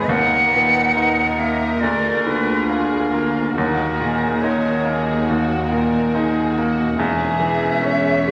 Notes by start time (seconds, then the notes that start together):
Already playing: B3 D#4 B4
0.07 D#2 D#3 A#3 A#4 F#5
0.52 A#2 B4
0.96 D#4 A#4
1.39 A#3 E5
1.80 D2 F4 G#4 D5
2.25 D3 B4
2.69 F4 G#4 A#4
3.11 A#3 F4
3.55 D#2 D#3 A#3 D#4 F#4 A#4
4.00 A#2 G#4
4.41 D#4 A#4 C#5
4.85 A#3 G#4
5.27 D#2 F#4
5.69 A#2 A#4
6.14 D#4 G#4
6.56 A#3 F#4
6.96 E1 E2 G#3 C#4 G#4 E5
7.40 E3
7.82 C#4 C#5
8.27 G#3